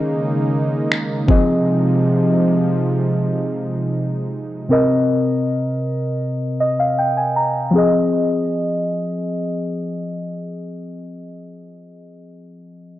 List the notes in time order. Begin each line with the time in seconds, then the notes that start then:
Already playing: C#3 D#3 G#3 A#3 C#4 D#4 G#4 D#5
0.92 finger snap
1.27 C3 F3 C4 G#4 D#5, kick
4.69 C3 C4 A#4 D#5
6.60 D#5
6.79 F5
6.98 G5
7.17 G#5
7.36 A#5
7.71 F3 C4
7.75 G#4 D#5